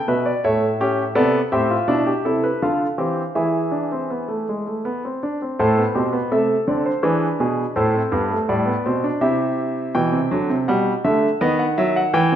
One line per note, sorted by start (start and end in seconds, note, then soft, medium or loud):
0.00 0.40 B3 medium
0.08 0.30 B2 medium
0.08 0.30 B4 medium
0.08 0.25 E5 medium
0.26 0.43 D5 medium
0.44 1.14 A2 medium
0.44 0.67 A3 medium
0.44 0.67 C#5 medium
0.44 1.14 E5 medium
0.80 1.03 C#4 medium
0.80 1.03 G4 medium
1.15 1.38 C3 medium
1.15 1.38 B3 medium
1.15 1.38 A4 medium
1.15 1.38 D5 medium
1.52 1.75 A2 medium
1.52 1.75 C4 medium
1.52 1.70 G4 medium
1.52 2.59 E5 medium
1.70 1.88 F4 medium
1.88 2.11 B2 medium
1.88 2.11 D4 medium
1.88 2.06 E4 medium
2.06 2.24 G4 medium
2.25 2.48 C3 medium
2.25 2.48 E4 medium
2.25 2.43 A4 medium
2.44 2.61 B4 medium
2.62 2.85 D3 medium
2.62 2.85 F4 medium
2.62 2.85 A4 medium
2.62 3.34 F5 medium
2.98 3.21 E3 medium
2.98 3.21 C4 medium
2.98 3.22 G4 medium
3.35 5.17 E3 medium
3.35 3.58 E4 medium
3.35 5.17 G#4 medium
3.35 5.17 E5 medium
3.72 3.90 D4 medium
3.92 4.10 C4 medium
4.10 4.28 B3 medium
4.28 4.46 A3 medium
4.49 4.66 G#3 medium
4.66 4.84 A3 medium
4.85 5.03 B3 medium
5.05 5.22 C4 medium
5.23 5.40 D4 medium
5.42 5.59 C4 medium
5.59 5.82 A2 medium
5.59 5.77 A3 medium
5.59 5.82 A4 medium
5.59 6.30 C5 medium
5.77 5.95 B3 medium
5.95 6.18 B2 medium
5.95 6.13 C4 medium
5.95 6.18 G4 medium
6.13 6.31 B3 medium
6.32 6.54 C3 medium
6.32 6.55 A3 medium
6.32 7.02 A4 medium
6.32 6.54 E5 medium
6.67 6.90 D3 medium
6.67 6.90 C4 medium
6.67 6.86 D5 medium
6.86 7.04 C5 medium
7.03 7.26 E3 medium
7.03 7.75 D4 medium
7.03 7.26 G#4 medium
7.03 7.74 B4 medium
7.40 7.63 B2 medium
7.40 7.63 G#4 medium
7.76 7.99 A2 medium
7.76 7.95 E4 medium
7.76 9.18 A4 medium
7.76 8.47 C5 medium
7.95 8.13 C4 medium
8.12 8.35 G2 medium
8.12 8.30 B3 medium
8.31 8.49 A3 medium
8.49 8.72 A2 medium
8.49 8.67 G3 medium
8.49 9.20 D5 medium
8.66 8.85 B3 medium
8.86 9.09 B2 medium
8.86 9.04 C4 medium
9.04 9.22 D4 medium
9.21 9.92 C3 medium
9.21 9.92 E4 medium
9.21 9.92 G4 medium
9.21 9.92 E5 medium
9.95 10.13 B2 medium
9.95 10.18 E3 medium
9.95 10.66 G5 medium
10.12 10.31 C3 medium
10.31 10.49 D3 medium
10.31 10.54 F#3 medium
10.49 10.67 C3 medium
10.68 10.91 B2 medium
10.68 10.91 G3 medium
10.68 10.91 F#5 medium
11.04 11.27 D3 medium
11.04 11.27 A3 medium
11.04 11.27 E5 medium
11.41 12.12 D#3 medium
11.41 11.64 B3 medium
11.41 11.59 D#5 medium
11.59 11.77 F#5 medium
11.78 12.00 F#3 medium
11.78 11.95 E5 medium
11.96 12.14 F#5 medium
12.14 12.32 E3 medium
12.14 12.36 G5 medium
12.32 12.36 C3 medium